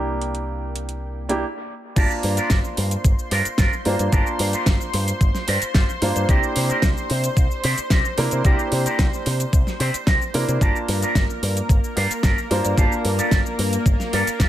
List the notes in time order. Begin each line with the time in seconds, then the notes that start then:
Already playing: C2 A#3 D4 E4 G4 G5
0.21 closed hi-hat
0.35 closed hi-hat
0.76 closed hi-hat
0.89 closed hi-hat
1.29 A#3 D4 E4 G4, closed hi-hat
1.96 G1 A#3 D4 F4 G4 A#4 C5 A5 C6, kick, closed hi-hat, crash, shaker
2.11 shaker
2.23 G2, muted clean electric guitar stroke, open hi-hat
2.37 D4 F4 G4 A#4, muted picked electric bass stroke, closed hi-hat, shaker
2.50 G1, kick, snare, closed hi-hat, shaker
2.65 shaker
2.77 G2, muted clean electric guitar stroke, open hi-hat
2.91 muted clean electric guitar stroke, closed hi-hat, shaker
3.04 G1, muted clean electric guitar stroke, kick, closed hi-hat, shaker
3.19 shaker
3.31 G2 D4 F4 G4 A#4, open hi-hat
3.45 muted picked electric bass stroke, closed hi-hat, shaker
3.58 G1 D4 F4 G4 A#4, kick, snare, closed hi-hat, shaker
3.73 shaker
3.85 G2 A#3 D4 F4 C5, muted clean electric guitar stroke, open hi-hat
3.99 G2, closed hi-hat, shaker
4.12 G1 A#3 D4 F4 G4 A#4 A5, kick, closed hi-hat, shaker
4.27 shaker
4.39 G2, muted clean electric guitar stroke, open hi-hat
4.53 D4 F4 G4 C5, muted picked electric bass stroke, closed hi-hat, shaker
4.66 G1, kick, snare, closed hi-hat, shaker
4.81 shaker
4.93 G2, muted clean electric guitar stroke, open hi-hat
5.07 muted clean electric guitar stroke, closed hi-hat, shaker
5.20 G1, muted clean electric guitar stroke, kick, closed hi-hat, shaker
5.35 snare, shaker
5.47 G2 D4 F4 G4 A#4, open hi-hat
5.62 muted picked electric bass stroke, closed hi-hat, shaker
5.74 G1 D4 F4 G4 C5, kick, snare, closed hi-hat, shaker
5.89 shaker
6.01 G2 A#3 D4 F4 C5, muted clean electric guitar stroke, open hi-hat
6.16 G2, closed hi-hat, shaker
6.28 C2 A#3 C4 D4 E4 G4 A#4, kick, closed hi-hat, shaker
6.43 shaker
6.55 C3, muted clean electric guitar stroke, open hi-hat
6.69 C4 E4 G4 A#4, muted picked electric bass stroke, closed hi-hat, shaker
6.82 C2, kick, snare, closed hi-hat, shaker
6.97 shaker
7.09 C3, muted clean electric guitar stroke, open hi-hat
7.23 muted clean electric guitar stroke, closed hi-hat, shaker
7.36 C2, muted clean electric guitar stroke, kick, closed hi-hat, shaker
7.51 shaker
7.63 C3 C4 E4 G4 C5, open hi-hat
7.78 muted picked electric bass stroke, closed hi-hat, shaker
7.90 C2 C4 E4 G4 A#4, kick, snare, closed hi-hat, shaker
8.05 shaker
8.18 C3 A#3 D4 E4 A#4, muted clean electric guitar stroke, open hi-hat
8.31 C3, closed hi-hat, shaker
8.44 C2 A#3 C4 D4 E4 G4 A#4, kick, closed hi-hat, shaker
8.59 shaker
8.72 C3, muted clean electric guitar stroke, open hi-hat
8.85 C4 E4 G4 A#4, muted picked electric bass stroke, closed hi-hat, shaker
8.99 C2, kick, snare, closed hi-hat, shaker
9.14 shaker
9.26 C3, muted clean electric guitar stroke, open hi-hat
9.39 muted clean electric guitar stroke, closed hi-hat, shaker
9.53 C2, kick, closed hi-hat, shaker
9.67 snare, shaker
9.79 C3 C4 E4 G4 C5, open hi-hat
9.94 muted picked electric bass stroke, closed hi-hat, shaker
10.07 C2 C4 E4 G4 A#4, kick, snare, closed hi-hat, shaker
10.22 shaker
10.34 C3 A#3 D4 E4 A#4, muted clean electric guitar stroke, open hi-hat
10.48 C3, closed hi-hat, shaker
10.60 G1 A#3 D4 F4 G4 A#4 A5, kick, closed hi-hat, shaker
10.76 shaker
10.88 G2, muted clean electric guitar stroke, open hi-hat
11.02 D4 F4 G4 A#4, muted picked electric bass stroke, closed hi-hat, shaker
11.15 G1, kick, snare, closed hi-hat, shaker
11.30 shaker
11.43 G2, muted clean electric guitar stroke, open hi-hat
11.56 muted clean electric guitar stroke, closed hi-hat, shaker
11.69 G1, muted clean electric guitar stroke, kick, closed hi-hat, shaker
11.84 shaker
11.96 G2 D4 F4 G4 C5, open hi-hat
12.11 muted picked electric bass stroke, closed hi-hat, shaker
12.23 G1 D4 F4 G4 A#4, kick, snare, closed hi-hat, shaker
12.38 shaker
12.50 G2 A#3 D4 F4 C5, muted clean electric guitar stroke, open hi-hat
12.65 G2, closed hi-hat, shaker
12.77 G1 A#3 D4 F4 G4 C5 A5, kick, closed hi-hat, shaker
12.92 shaker
13.04 G2, muted clean electric guitar stroke, open hi-hat
13.18 D4 F4 G4 A4, muted picked electric bass stroke, closed hi-hat, shaker
13.31 G1, kick, snare, closed hi-hat, shaker
13.46 shaker
13.59 G2, muted clean electric guitar stroke, open hi-hat
13.72 muted clean electric guitar stroke, closed hi-hat, shaker
13.85 G1, muted clean electric guitar stroke, kick, closed hi-hat, shaker
14.00 snare, shaker
14.13 G2 D4 F4 G4 A4, open hi-hat
14.27 muted picked electric bass stroke, closed hi-hat, shaker
14.39 G1 D4 F4 G4 A#4, kick, snare, closed hi-hat, shaker